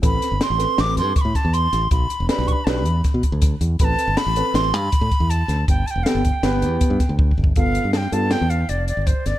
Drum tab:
HH |x--x--x--x--x--x--x--x--x--x--|x--x--x--x--x--x--x--x--x--x--|x--x--x--x--x--x--x--x--x--x--|x--x--x--x--x--x--x--x--------|
SD |---o--o--o--o--o-----o-----o--|------o-----o-----o-----------|------o-----o--------------o--|------o-----o--------o--------|
BD |o-----------------o--o--------|o--------o--------o--o--o-----|o-----------------o--o--------|o--------o--------o--o--o-o-o-|

HH |x--x--x--x--x--x--x--x--x--x--|
SD |------o-----o--------------o--|
BD |o-----------------------o-----|